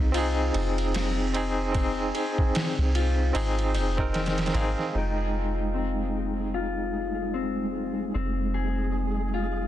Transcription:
0.00 0.51 C2 medium
0.00 0.12 C4 medium
0.00 0.94 C4 medium
0.00 0.11 D#4 medium
0.00 0.13 F4 medium
0.00 0.12 G#4 medium
0.12 1.29 C4 loud
0.12 1.31 D#4 medium
0.12 2.66 F4 loud
0.12 ride medium
0.17 1.32 G#4 loud
0.54 2.11 F1 medium
0.54 ride medium
0.78 ride soft
0.94 1.74 C4 medium
0.94 snare loud
0.94 ride medium
1.34 1.70 C4 medium
1.34 1.71 D#4 medium
1.34 1.71 G#4 loud
1.34 ride medium
1.72 3.29 C4 medium
1.72 4.75 C4 medium
1.72 3.31 D#4 medium
1.72 kick loud
1.72 ride medium
1.78 3.32 G#4 medium
2.15 4.42 G#4 medium
2.15 ride medium
2.38 kick medium
2.55 snare loud
2.55 ride medium
2.78 3.31 C2 medium
2.95 4.94 F4 medium
2.95 ride medium
3.33 3.76 G#1 medium
3.33 3.93 C4 medium
3.33 3.93 D#4 medium
3.33 3.94 G#4 loud
3.33 ride medium
3.59 ride soft
3.74 4.51 F1 loud
3.74 6.44 D#4 medium
3.74 ride medium
3.97 4.14 C4 medium
3.97 4.15 D#4 medium
3.97 4.15 A#4 loud
3.97 kick medium
4.14 snare medium
4.14 ride medium
4.26 snare medium
4.26 ride medium
4.38 snare medium
4.38 ride medium
4.46 snare medium
4.46 ride medium
4.54 4.75 G#1 loud
4.54 4.90 C4 medium
4.54 4.91 D#4 medium
4.54 4.91 G#4 loud
4.54 6.21 F5 medium
4.54 ride medium
4.79 snare soft
4.92 8.11 F1 medium
4.92 9.68 G#3 medium
4.92 9.68 D#4 medium
4.92 6.54 F4 medium
4.98 9.68 G5 medium
5.74 7.33 C4 medium
6.54 9.06 F4 medium
7.34 8.14 C4 medium
8.14 9.68 F1 medium
8.14 9.68 C4 medium
8.54 9.68 G#4 medium
9.34 9.68 F4 medium

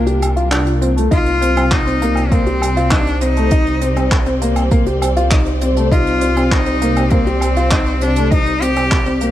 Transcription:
0.00 1.09 C2 medium
0.00 2.82 A#3 medium
0.00 0.52 D4 loud
0.00 2.81 F4 medium
0.00 1.98 A#4 medium
0.07 0.26 G4 medium
0.07 closed hi-hat soft
0.22 closed hi-hat medium
0.22 low woodblock medium
0.36 0.46 F4 medium
0.36 closed hi-hat soft
0.51 0.70 D4 medium
0.51 clap loud
0.51 closed hi-hat medium
0.67 closed hi-hat soft
0.81 0.91 C4 medium
0.81 closed hi-hat medium
0.96 1.06 A3 medium
0.96 closed hi-hat medium
1.11 9.31 C2 medium
1.11 9.31 C4 medium
1.11 1.30 D#4 loud
1.11 1.73 F4 loud
1.11 kick loud
1.11 closed hi-hat medium
1.26 closed hi-hat soft
1.41 1.51 C4 medium
1.41 9.31 G4 medium
1.41 closed hi-hat medium
1.57 1.76 C4 medium
1.57 closed hi-hat medium
1.57 low woodblock medium
1.71 2.33 D#4 loud
1.71 kick loud
1.71 clap medium
1.71 closed hi-hat medium
1.87 1.96 C4 medium
1.87 9.31 D5 medium
1.87 closed hi-hat soft
2.02 2.21 A#3 medium
2.02 closed hi-hat medium
2.15 closed hi-hat medium
2.15 low woodblock medium
2.29 2.41 A#3 medium
2.29 2.93 C4 loud
2.29 9.31 C5 medium
2.29 kick loud
2.29 closed hi-hat medium
2.46 2.66 G4 medium
2.46 closed hi-hat soft
2.62 closed hi-hat medium
2.62 low woodblock medium
2.77 2.86 F4 medium
2.77 closed hi-hat soft
2.91 3.23 D4 loud
2.91 3.11 D#4 medium
2.91 kick loud
2.91 clap loud
2.91 closed hi-hat medium
3.07 closed hi-hat soft
3.21 3.31 C4 medium
3.21 4.11 D#4 loud
3.21 closed hi-hat medium
3.37 3.46 A3 medium
3.37 closed hi-hat medium
3.51 3.71 D#4 loud
3.51 kick loud
3.51 closed hi-hat medium
3.67 closed hi-hat soft
3.81 3.91 C4 medium
3.81 closed hi-hat medium
3.96 4.16 C4 medium
3.96 closed hi-hat soft
3.96 low woodblock medium
4.12 kick loud
4.12 clap medium
4.12 closed hi-hat medium
4.26 4.36 C4 medium
4.26 closed hi-hat soft
4.42 4.61 A#3 medium
4.42 closed hi-hat medium
4.56 closed hi-hat medium
4.56 low woodblock medium
4.71 4.81 A#3 loud
4.71 kick loud
4.71 closed hi-hat medium
4.86 5.05 G4 medium
4.86 closed hi-hat soft
5.02 closed hi-hat medium
5.02 low woodblock medium
5.16 5.26 F4 medium
5.16 closed hi-hat soft
5.31 5.51 D#4 medium
5.31 kick loud
5.31 clap loud
5.31 closed hi-hat medium
5.46 closed hi-hat soft
5.61 5.71 C4 medium
5.61 closed hi-hat medium
5.77 5.86 A3 medium
5.77 closed hi-hat soft
5.91 6.11 D#4 loud
5.91 6.53 F4 loud
5.91 kick loud
5.91 closed hi-hat medium
6.07 closed hi-hat soft
6.21 6.31 C4 medium
6.21 closed hi-hat loud
6.37 6.56 C4 medium
6.37 closed hi-hat medium
6.37 low woodblock medium
6.52 7.13 D#4 loud
6.52 kick loud
6.52 clap medium
6.52 closed hi-hat medium
6.66 6.76 C4 medium
6.66 closed hi-hat soft
6.82 7.01 A#3 medium
6.82 closed hi-hat medium
6.96 closed hi-hat medium
6.96 low woodblock medium
7.10 7.21 A#3 loud
7.10 8.03 C4 loud
7.10 kick loud
7.10 closed hi-hat medium
7.27 7.46 G4 medium
7.27 closed hi-hat soft
7.41 closed hi-hat medium
7.41 low woodblock medium
7.56 7.66 F4 medium
7.56 closed hi-hat soft
7.71 7.91 D#4 medium
7.71 kick loud
7.71 clap loud
7.71 closed hi-hat medium
7.86 closed hi-hat soft
8.01 8.11 C4 medium
8.01 8.32 D4 loud
8.01 closed hi-hat medium
8.16 8.26 A3 medium
8.16 closed hi-hat medium
8.31 8.50 D#4 loud
8.31 8.64 D#4 loud
8.31 kick loud
8.31 closed hi-hat medium
8.46 closed hi-hat soft
8.62 8.71 C4 medium
8.62 9.22 G4 loud
8.62 closed hi-hat medium
8.76 8.96 C4 medium
8.76 closed hi-hat soft
8.76 low woodblock medium
8.91 kick loud
8.91 clap medium
8.91 closed hi-hat medium
9.06 9.16 C4 medium
9.06 closed hi-hat soft
9.21 9.31 A#3 medium
9.21 closed hi-hat medium

